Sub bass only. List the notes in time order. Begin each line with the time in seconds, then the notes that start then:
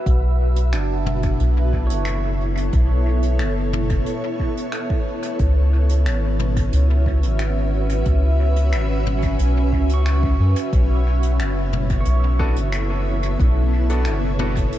0.06 B1
0.73 F#1
1.40 B1
1.90 F#1
2.73 B1
3.40 F#1
5.40 C#2
6.06 G#1
6.73 C#2
7.23 G#1
8.06 C#2
8.73 G#1
9.39 B1
9.73 C#2
10.39 F#2
10.73 B1
11.40 F#1
12.06 B1
12.57 F#1
13.40 B1
14.06 F#1